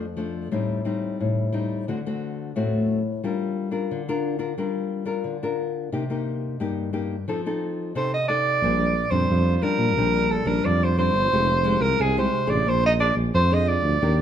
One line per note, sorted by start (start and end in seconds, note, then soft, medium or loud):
0.00 0.48 F2 medium
0.17 0.49 F3 soft
0.17 0.49 A3 soft
0.17 0.49 D4 soft
0.51 1.16 A2 medium
0.51 0.80 G3 soft
0.51 0.81 C4 soft
0.51 0.81 D#4 medium
0.85 1.48 G3 soft
0.85 1.48 C4 soft
0.85 1.48 D#4 medium
1.20 1.84 A2 medium
1.53 1.84 G3 medium
1.53 1.85 C4 soft
1.53 1.85 D#4 medium
1.88 2.52 D3 medium
1.88 1.98 A3 soft
1.88 1.98 C4 soft
1.88 1.98 F#4 soft
2.06 2.51 A3 soft
2.06 2.51 C4 soft
2.06 2.51 F#4 medium
2.56 3.20 A2 medium
2.56 2.99 A3 soft
2.56 2.99 C4 soft
2.56 2.99 F#4 medium
3.24 3.87 G3 medium
3.24 3.68 D4 soft
3.24 3.69 F4 soft
3.24 3.69 A#4 soft
3.71 4.01 D4 medium
3.71 4.01 F4 soft
3.71 4.01 A#4 medium
3.91 4.55 D3 medium
4.09 4.36 D4 medium
4.09 4.36 F4 medium
4.09 4.36 A#4 medium
4.39 4.51 D4 soft
4.39 4.51 F4 medium
4.39 4.52 A#4 medium
4.58 5.22 G3 medium
4.58 5.03 D4 soft
4.58 5.03 F4 soft
4.58 5.03 A#4 soft
5.05 5.35 D4 medium
5.05 5.36 F4 medium
5.05 5.36 A#4 medium
5.24 5.89 D3 medium
5.43 5.88 D4 medium
5.43 5.88 F4 medium
5.43 5.88 A#4 medium
5.92 6.57 C3 medium
5.92 6.03 A#3 medium
5.92 6.03 D#4 soft
5.92 6.03 G4 medium
6.10 6.55 A#3 soft
6.10 6.55 D#4 medium
6.10 6.55 G4 medium
6.60 7.24 G2 medium
6.60 6.88 A#3 medium
6.60 6.89 D#4 soft
6.60 6.89 G4 medium
6.93 7.15 A#3 soft
6.93 7.15 D#4 medium
6.93 7.15 G4 medium
7.28 7.92 F3 medium
7.28 7.39 C4 soft
7.28 7.40 D#4 soft
7.28 7.40 A4 medium
7.46 7.90 C4 soft
7.46 7.91 D#4 medium
7.46 7.91 A4 medium
7.95 8.59 C3 medium
7.95 8.15 C4 medium
7.95 8.15 D#4 medium
7.95 8.16 A4 medium
7.95 8.12 C5 medium
8.14 8.27 D#5 medium
8.28 8.60 C4 soft
8.28 8.60 D#4 soft
8.28 8.60 A4 medium
8.28 9.12 D5 medium
8.62 9.05 A#1 medium
8.62 9.27 A#2 medium
8.62 8.94 G3 medium
8.62 8.95 C4 medium
8.62 8.95 D4 medium
9.11 9.26 F2 medium
9.11 9.57 G3 medium
9.11 9.57 C4 medium
9.11 9.57 D4 medium
9.11 9.56 C5 medium
9.30 9.59 F2 medium
9.30 9.95 F3 medium
9.56 9.64 C5 medium
9.62 9.91 G3 medium
9.62 9.91 C4 medium
9.62 9.92 D4 medium
9.62 10.32 A#4 medium
9.78 9.99 A#2 medium
9.97 10.41 A#1 medium
9.97 10.61 A#2 soft
9.97 10.42 G3 medium
9.97 10.42 C4 soft
9.97 10.43 D4 medium
10.31 10.48 A4 medium
10.45 10.61 A#1 medium
10.45 10.92 G3 medium
10.45 10.92 C4 medium
10.45 10.92 D4 medium
10.45 10.67 A#4 medium
10.65 11.08 F2 medium
10.65 11.29 F3 medium
10.65 10.85 D5 medium
10.84 10.98 C5 medium
10.97 11.26 G3 medium
10.97 11.26 C4 soft
10.97 11.26 D4 medium
10.97 11.83 C5 loud
11.13 11.28 G1 medium
11.32 11.75 F1 medium
11.32 11.96 F3 medium
11.32 11.52 G#3 medium
11.32 11.52 D#4 medium
11.32 11.52 G4 medium
11.64 11.96 G#3 medium
11.64 11.97 D#4 medium
11.64 11.97 G4 medium
11.80 11.95 C2 medium
11.80 12.02 A#4 medium
11.99 12.28 C2 medium
11.99 12.63 C3 medium
11.99 12.17 G#4 medium
12.17 12.45 G#3 medium
12.17 12.45 D#4 medium
12.17 12.45 G4 medium
12.17 12.51 C5 medium
12.47 12.69 A1 medium
12.47 12.93 D4 medium
12.47 12.94 G#4 medium
12.47 12.94 C5 medium
12.47 12.70 D5 medium
12.66 13.10 A#1 medium
12.66 13.30 A#3 medium
12.66 12.85 C5 medium
12.86 12.93 D#5 medium
12.99 13.31 D4 medium
12.99 13.31 G#4 soft
12.99 13.32 C5 medium
12.99 13.15 D5 medium
13.15 13.30 A#1 medium
13.34 13.77 F2 medium
13.34 13.98 F3 medium
13.34 13.55 C5 medium
13.51 13.96 D4 medium
13.51 13.96 G#4 medium
13.51 13.97 C5 medium
13.51 13.69 D#5 medium
13.68 14.22 D5 loud
13.83 13.98 D2 medium
14.02 14.22 D#2 loud
14.02 14.22 D#3 medium
14.02 14.22 D4 medium
14.02 14.22 G4 medium
14.02 14.22 A#4 medium